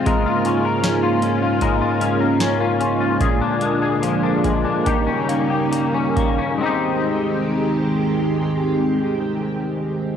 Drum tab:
HH |xxxxxxxx|xxxxxxxx|--------|
SD |--o---o-|--------|--------|
BD |o---o---|o--oo--o|--------|